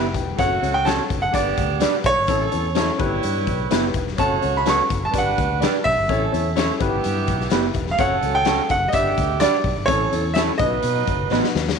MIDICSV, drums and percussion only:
0, 0, Header, 1, 2, 480
1, 0, Start_track
1, 0, Tempo, 475436
1, 386, Time_signature, 4, 2, 24, 8
1, 11903, End_track
2, 0, Start_track
2, 0, Title_t, "Drums"
2, 146, Note_on_c, 9, 36, 78
2, 148, Note_on_c, 9, 42, 71
2, 247, Note_off_c, 9, 36, 0
2, 249, Note_off_c, 9, 42, 0
2, 390, Note_on_c, 9, 36, 99
2, 391, Note_on_c, 9, 42, 83
2, 491, Note_off_c, 9, 36, 0
2, 492, Note_off_c, 9, 42, 0
2, 639, Note_on_c, 9, 42, 64
2, 740, Note_off_c, 9, 42, 0
2, 871, Note_on_c, 9, 42, 81
2, 884, Note_on_c, 9, 38, 95
2, 972, Note_off_c, 9, 42, 0
2, 985, Note_off_c, 9, 38, 0
2, 1113, Note_on_c, 9, 42, 58
2, 1114, Note_on_c, 9, 36, 85
2, 1214, Note_off_c, 9, 42, 0
2, 1215, Note_off_c, 9, 36, 0
2, 1351, Note_on_c, 9, 36, 86
2, 1353, Note_on_c, 9, 42, 87
2, 1452, Note_off_c, 9, 36, 0
2, 1454, Note_off_c, 9, 42, 0
2, 1590, Note_on_c, 9, 42, 65
2, 1592, Note_on_c, 9, 36, 80
2, 1691, Note_off_c, 9, 42, 0
2, 1693, Note_off_c, 9, 36, 0
2, 1820, Note_on_c, 9, 42, 97
2, 1836, Note_on_c, 9, 38, 113
2, 1921, Note_off_c, 9, 42, 0
2, 1937, Note_off_c, 9, 38, 0
2, 2057, Note_on_c, 9, 42, 66
2, 2063, Note_on_c, 9, 36, 87
2, 2158, Note_off_c, 9, 42, 0
2, 2163, Note_off_c, 9, 36, 0
2, 2295, Note_on_c, 9, 42, 83
2, 2304, Note_on_c, 9, 36, 96
2, 2396, Note_off_c, 9, 42, 0
2, 2405, Note_off_c, 9, 36, 0
2, 2542, Note_on_c, 9, 42, 67
2, 2643, Note_off_c, 9, 42, 0
2, 2778, Note_on_c, 9, 42, 85
2, 2791, Note_on_c, 9, 38, 96
2, 2878, Note_off_c, 9, 42, 0
2, 2892, Note_off_c, 9, 38, 0
2, 3020, Note_on_c, 9, 42, 64
2, 3025, Note_on_c, 9, 36, 102
2, 3121, Note_off_c, 9, 42, 0
2, 3126, Note_off_c, 9, 36, 0
2, 3259, Note_on_c, 9, 42, 84
2, 3360, Note_off_c, 9, 42, 0
2, 3501, Note_on_c, 9, 42, 62
2, 3506, Note_on_c, 9, 36, 80
2, 3602, Note_off_c, 9, 42, 0
2, 3607, Note_off_c, 9, 36, 0
2, 3743, Note_on_c, 9, 42, 91
2, 3758, Note_on_c, 9, 38, 113
2, 3844, Note_off_c, 9, 42, 0
2, 3859, Note_off_c, 9, 38, 0
2, 3974, Note_on_c, 9, 42, 67
2, 3981, Note_on_c, 9, 36, 82
2, 4075, Note_off_c, 9, 42, 0
2, 4082, Note_off_c, 9, 36, 0
2, 4113, Note_on_c, 9, 38, 38
2, 4214, Note_off_c, 9, 38, 0
2, 4220, Note_on_c, 9, 42, 85
2, 4224, Note_on_c, 9, 36, 93
2, 4321, Note_off_c, 9, 42, 0
2, 4325, Note_off_c, 9, 36, 0
2, 4465, Note_on_c, 9, 42, 66
2, 4566, Note_off_c, 9, 42, 0
2, 4702, Note_on_c, 9, 42, 85
2, 4716, Note_on_c, 9, 38, 95
2, 4803, Note_off_c, 9, 42, 0
2, 4817, Note_off_c, 9, 38, 0
2, 4951, Note_on_c, 9, 36, 89
2, 4951, Note_on_c, 9, 42, 60
2, 5052, Note_off_c, 9, 36, 0
2, 5052, Note_off_c, 9, 42, 0
2, 5186, Note_on_c, 9, 36, 88
2, 5188, Note_on_c, 9, 42, 94
2, 5287, Note_off_c, 9, 36, 0
2, 5289, Note_off_c, 9, 42, 0
2, 5433, Note_on_c, 9, 36, 88
2, 5435, Note_on_c, 9, 42, 65
2, 5534, Note_off_c, 9, 36, 0
2, 5536, Note_off_c, 9, 42, 0
2, 5673, Note_on_c, 9, 42, 100
2, 5688, Note_on_c, 9, 38, 108
2, 5773, Note_off_c, 9, 42, 0
2, 5789, Note_off_c, 9, 38, 0
2, 5910, Note_on_c, 9, 36, 81
2, 5919, Note_on_c, 9, 46, 55
2, 6011, Note_off_c, 9, 36, 0
2, 6020, Note_off_c, 9, 46, 0
2, 6151, Note_on_c, 9, 36, 97
2, 6153, Note_on_c, 9, 42, 88
2, 6252, Note_off_c, 9, 36, 0
2, 6254, Note_off_c, 9, 42, 0
2, 6400, Note_on_c, 9, 42, 64
2, 6501, Note_off_c, 9, 42, 0
2, 6628, Note_on_c, 9, 42, 78
2, 6641, Note_on_c, 9, 38, 92
2, 6728, Note_off_c, 9, 42, 0
2, 6742, Note_off_c, 9, 38, 0
2, 6871, Note_on_c, 9, 36, 110
2, 6872, Note_on_c, 9, 42, 66
2, 6972, Note_off_c, 9, 36, 0
2, 6973, Note_off_c, 9, 42, 0
2, 7106, Note_on_c, 9, 42, 92
2, 7207, Note_off_c, 9, 42, 0
2, 7344, Note_on_c, 9, 42, 62
2, 7351, Note_on_c, 9, 36, 84
2, 7445, Note_off_c, 9, 42, 0
2, 7452, Note_off_c, 9, 36, 0
2, 7477, Note_on_c, 9, 38, 35
2, 7572, Note_on_c, 9, 42, 98
2, 7578, Note_off_c, 9, 38, 0
2, 7588, Note_on_c, 9, 38, 113
2, 7673, Note_off_c, 9, 42, 0
2, 7689, Note_off_c, 9, 38, 0
2, 7813, Note_on_c, 9, 42, 72
2, 7821, Note_on_c, 9, 36, 83
2, 7914, Note_off_c, 9, 42, 0
2, 7922, Note_off_c, 9, 36, 0
2, 7945, Note_on_c, 9, 38, 38
2, 8046, Note_off_c, 9, 38, 0
2, 8058, Note_on_c, 9, 42, 89
2, 8063, Note_on_c, 9, 36, 111
2, 8159, Note_off_c, 9, 42, 0
2, 8164, Note_off_c, 9, 36, 0
2, 8303, Note_on_c, 9, 42, 68
2, 8404, Note_off_c, 9, 42, 0
2, 8527, Note_on_c, 9, 42, 89
2, 8541, Note_on_c, 9, 38, 102
2, 8628, Note_off_c, 9, 42, 0
2, 8642, Note_off_c, 9, 38, 0
2, 8776, Note_on_c, 9, 42, 67
2, 8784, Note_on_c, 9, 36, 88
2, 8877, Note_off_c, 9, 42, 0
2, 8885, Note_off_c, 9, 36, 0
2, 9009, Note_on_c, 9, 42, 95
2, 9019, Note_on_c, 9, 36, 90
2, 9110, Note_off_c, 9, 42, 0
2, 9120, Note_off_c, 9, 36, 0
2, 9262, Note_on_c, 9, 42, 65
2, 9265, Note_on_c, 9, 36, 79
2, 9363, Note_off_c, 9, 42, 0
2, 9366, Note_off_c, 9, 36, 0
2, 9489, Note_on_c, 9, 42, 100
2, 9504, Note_on_c, 9, 38, 117
2, 9590, Note_off_c, 9, 42, 0
2, 9605, Note_off_c, 9, 38, 0
2, 9730, Note_on_c, 9, 46, 54
2, 9734, Note_on_c, 9, 36, 82
2, 9831, Note_off_c, 9, 46, 0
2, 9835, Note_off_c, 9, 36, 0
2, 9969, Note_on_c, 9, 42, 92
2, 9975, Note_on_c, 9, 36, 106
2, 10070, Note_off_c, 9, 42, 0
2, 10076, Note_off_c, 9, 36, 0
2, 10222, Note_on_c, 9, 42, 72
2, 10323, Note_off_c, 9, 42, 0
2, 10447, Note_on_c, 9, 42, 85
2, 10461, Note_on_c, 9, 38, 96
2, 10548, Note_off_c, 9, 42, 0
2, 10562, Note_off_c, 9, 38, 0
2, 10693, Note_on_c, 9, 42, 65
2, 10697, Note_on_c, 9, 36, 107
2, 10794, Note_off_c, 9, 42, 0
2, 10798, Note_off_c, 9, 36, 0
2, 10928, Note_on_c, 9, 42, 96
2, 11029, Note_off_c, 9, 42, 0
2, 11175, Note_on_c, 9, 42, 62
2, 11182, Note_on_c, 9, 36, 82
2, 11276, Note_off_c, 9, 42, 0
2, 11283, Note_off_c, 9, 36, 0
2, 11428, Note_on_c, 9, 38, 54
2, 11529, Note_off_c, 9, 38, 0
2, 11549, Note_on_c, 9, 38, 64
2, 11650, Note_off_c, 9, 38, 0
2, 11669, Note_on_c, 9, 38, 79
2, 11770, Note_off_c, 9, 38, 0
2, 11798, Note_on_c, 9, 38, 97
2, 11899, Note_off_c, 9, 38, 0
2, 11903, End_track
0, 0, End_of_file